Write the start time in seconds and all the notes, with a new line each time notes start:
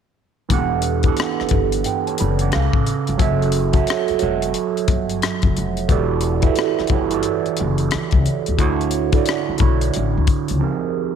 0.49 E1 E3 B3 D4 G4, kick, closed hi-hat
0.53 A4 F#5
0.82 closed hi-hat
1.03 E3 B3 D4 G4, kick, closed hi-hat
1.08 A4 F#5
1.17 cross-stick, closed hi-hat
1.40 muted upright bass stroke, cross-stick
1.49 G1, kick, closed hi-hat
1.72 closed hi-hat
1.84 B4 G5, closed hi-hat
2.07 C#5 A5, closed hi-hat
2.18 F#1 D5 B5, closed hi-hat
2.39 F#5 D6, closed hi-hat
2.50 C#3 C#4 A4 B4, cross-stick, closed hi-hat
2.55 C#2 F5
2.73 A1, kick
2.87 closed hi-hat
3.07 G1, closed hi-hat
3.17 F#1 F#3 F#4 A4 C#5, kick, closed hi-hat
3.22 E5
3.42 closed hi-hat
3.52 closed hi-hat
3.72 F#3 F#4 A4 C#5, kick, closed hi-hat
3.76 E5
3.87 cross-stick, closed hi-hat
4.08 muted upright bass stroke, closed hi-hat
4.19 E1 F#3 F#4 A4 C#5, closed hi-hat
4.23 F#5
4.42 closed hi-hat
4.54 closed hi-hat
4.77 closed hi-hat
4.88 G1, kick, closed hi-hat
5.09 closed hi-hat
5.22 cross-stick, closed hi-hat
5.42 F#1, kick, closed hi-hat
5.57 F1, closed hi-hat
5.77 closed hi-hat
5.88 E1 E3 E4 F#4 G4 A4 D5, kick, closed hi-hat
6.21 closed hi-hat
6.42 E3 E4 F#4 G4 A4, kick, closed hi-hat
6.46 E5
6.56 cross-stick, closed hi-hat
6.79 muted upright bass stroke, cross-stick
6.87 G1 E3 E4 F#4, kick, closed hi-hat
6.92 G4 A4 C#5
7.10 E3 E4 F#4 G4 A4, closed hi-hat
7.14 D5
7.23 closed hi-hat
7.46 closed hi-hat
7.57 F#1, closed hi-hat
7.78 closed hi-hat
7.91 muted upright bass stroke, cross-stick, closed hi-hat
8.11 C#2, kick, closed hi-hat
8.26 closed hi-hat
8.46 D#2, closed hi-hat
8.57 D2 D3 D4 E4 F#4, kick, closed hi-hat
8.62 C#5
8.81 closed hi-hat
8.91 closed hi-hat
9.12 D3 D4 E4 F#4, kick, closed hi-hat
9.17 D5
9.26 cross-stick, closed hi-hat
9.49 muted upright bass stroke
9.58 B1 D3 D4 E4 F#4, kick, closed hi-hat
9.62 C#5
9.81 closed hi-hat
9.94 A1, closed hi-hat
10.17 D2
10.27 kick, closed hi-hat
10.48 C#2, closed hi-hat
10.59 F3 C4 D#4 G4 G#4
10.63 A#4